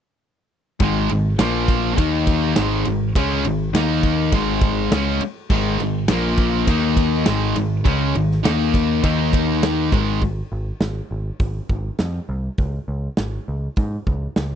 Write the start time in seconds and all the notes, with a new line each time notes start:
0.80 G#1 G#2 D#3 G#3, kick, ride
1.09 G#1 G#2 D#3, ride
1.38 A#1 A#2 F3 A#3, snare, ride
1.68 kick, snare, ride
1.96 D#2 D#3 A#3 D#4, kick, ride
2.27 kick, ride
2.56 G#1 G#2 D#3 G#3, snare, ride
2.85 G#1 G#2 D#3, ride
3.15 C#2 C#3 G#3 C#4, kick, ride
3.45 G#1 G#2 D#3, ride
3.73 D#2 D#3 A#3 D#4, snare, ride
4.03 kick, ride
4.32 G#1 G#2 D#3 G#3, kick, ride
4.61 kick, ride
4.92 C#2 C#3 G#3 C#4, snare, ride
5.21 muted picked electric bass stroke, muted distorted electric guitar stroke, muted overdriven electric guitar stroke, ride
5.50 G#1 G#2 D#3 G#3, kick, crash
5.78 G#1 G#2 D#3, ride
6.08 A#1 A#2 F3 A#3, snare, ride
6.37 kick, ride
6.67 D#2 D#3 A#3 D#4, kick, ride
6.97 kick, ride
7.25 G#1 G#2 D#3 G#3, snare, ride
7.55 G#1 G#2 D#3, ride
7.84 C#2 C#3 G#3 C#4, kick, ride
8.15 G#1 G#2 D#3, ride
8.31 snare
8.45 D#2 D#3 A#3 D#4, snare, ride
8.74 kick, snare, ride
9.03 D#2 D#3 A#3 D#4, kick, ride
9.33 kick, ride
9.63 snare, ride
9.92 G#1 G#2 D#3 G#3, kick, ride
10.22 G#1, kick, open hi-hat
10.52 G#1
10.80 G#1, snare, open hi-hat
11.11 G#1
11.40 G#1, kick, open hi-hat
11.69 G#1, kick
11.99 F2, snare, open hi-hat
12.29 C2
12.58 C#2, kick, open hi-hat
12.88 C#2
13.17 G#1, snare, open hi-hat
13.48 C#2
13.76 G#2, kick, open hi-hat
14.07 C#2, kick
14.36 C#2, snare, open hi-hat